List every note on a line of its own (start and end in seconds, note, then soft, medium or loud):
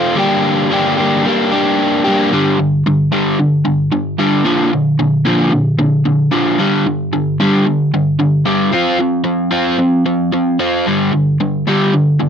0.00 0.17 F3 medium
0.00 0.17 A3 medium
0.00 0.16 C4 medium
0.00 0.16 F4 medium
0.16 0.69 G2 loud
0.16 0.70 D3 loud
0.16 0.70 G3 loud
0.16 0.71 A#3 loud
0.16 0.72 D4 loud
0.16 0.72 G4 loud
0.70 1.24 G2 medium
0.70 1.25 D3 loud
0.70 0.99 G3 loud
0.70 0.98 A#3 loud
0.70 0.97 D4 loud
0.70 0.96 G4 loud
0.97 1.23 G3 medium
0.97 1.25 A#3 medium
0.97 1.26 D4 medium
0.97 1.27 G4 medium
1.24 1.54 G3 medium
1.24 1.53 A#3 medium
1.24 1.52 D4 medium
1.24 1.50 G4 medium
1.51 2.07 G3 medium
1.51 2.06 A#3 medium
1.51 2.05 D4 medium
1.51 2.03 G4 medium
2.04 2.31 G3 medium
2.04 2.31 A#3 medium
2.04 2.30 D4 medium
2.04 2.30 G4 medium
2.32 2.57 G2 medium
2.32 2.58 D3 medium
2.32 2.58 G3 loud
2.58 2.82 G2 medium
2.58 2.83 D3 medium
2.86 3.10 G2 medium
2.86 3.10 D3 medium
3.12 3.37 G2 medium
3.12 3.38 D3 medium
3.12 3.38 G3 medium
3.39 3.63 G2 medium
3.39 3.63 D3 medium
3.65 3.89 G2 medium
3.65 3.89 D3 medium
3.92 4.16 G2 medium
3.92 4.16 D3 medium
4.19 4.44 G2 medium
4.19 4.44 D3 loud
4.19 4.44 G3 medium
4.45 4.70 A#2 medium
4.45 4.71 D3 medium
4.45 4.71 F3 loud
4.73 4.97 A#2 medium
4.73 4.97 D3 medium
4.99 5.23 A#2 medium
4.99 5.23 D3 medium
5.25 5.51 A#2 medium
5.25 5.51 D3 medium
5.25 5.51 F3 medium
5.52 5.76 A#2 medium
5.52 5.77 D3 medium
5.79 6.03 A#2 medium
5.79 6.03 D3 medium
6.05 6.30 A#2 medium
6.05 6.30 D3 medium
6.31 6.57 A#2 medium
6.31 6.57 D3 medium
6.31 6.58 F3 medium
6.58 6.84 G2 medium
6.58 6.84 D3 loud
6.58 6.85 G3 loud
6.87 7.10 G2 medium
6.87 7.10 D3 medium
7.13 7.37 G2 medium
7.13 7.37 D3 medium
7.40 7.65 G2 medium
7.40 7.65 D3 medium
7.40 7.66 G3 medium
7.66 7.90 G2 medium
7.66 7.90 D3 medium
7.94 8.17 G2 medium
7.94 8.18 D3 medium
8.20 8.44 G2 medium
8.20 8.44 D3 medium
8.45 8.71 G2 medium
8.45 8.71 D3 medium
8.45 8.71 G3 loud
8.72 8.98 F3 medium
8.72 8.98 C4 loud
8.72 8.98 F4 loud
8.99 9.23 F3 medium
8.99 9.23 C4 medium
9.24 9.49 F3 medium
9.24 9.49 C4 medium
9.51 9.77 F3 medium
9.51 9.77 C4 medium
9.51 9.78 F4 medium
9.79 10.04 F3 medium
9.79 10.03 C4 medium
10.06 10.30 F3 medium
10.06 10.30 C4 medium
10.32 10.57 F3 medium
10.32 10.57 C4 medium
10.60 10.85 F3 medium
10.60 10.85 C4 medium
10.60 10.85 F4 medium
10.86 11.11 G2 loud
10.86 11.12 D3 medium
10.86 11.12 G3 loud
11.12 11.37 G2 medium
11.12 11.37 D3 medium
11.40 11.64 G2 medium
11.40 11.64 D3 medium
11.67 11.92 G2 medium
11.67 11.92 D3 medium
11.67 11.93 G3 medium
11.93 12.18 G2 medium
11.93 12.18 D3 medium
12.20 12.29 G2 medium
12.20 12.29 D3 medium